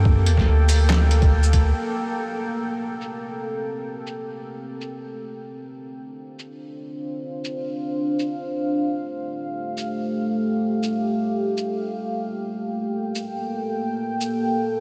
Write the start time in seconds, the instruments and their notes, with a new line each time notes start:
Already playing: sub bass G2, ambient pad A#3 A4 G5
0.05 kick
0.26 closed hi-hat
0.37 kick, snare
0.48 sub bass D2
0.69 open hi-hat, shaker
0.90 snare, clap
1.11 closed hi-hat
1.22 kick, closed hi-hat
1.43 shaker
1.53 kick, closed hi-hat
1.74 ambient pad C4 A4 G5
3.01 shaker
4.07 shaker
4.81 shaker
5.12 ambient pad D4 C5 F5
6.39 shaker
7.45 shaker
8.19 shaker
8.50 ambient pad A3 G4
9.77 shaker
10.83 shaker
11.57 shaker
11.88 ambient pad A#3 A4 G5
13.15 shaker
14.21 shaker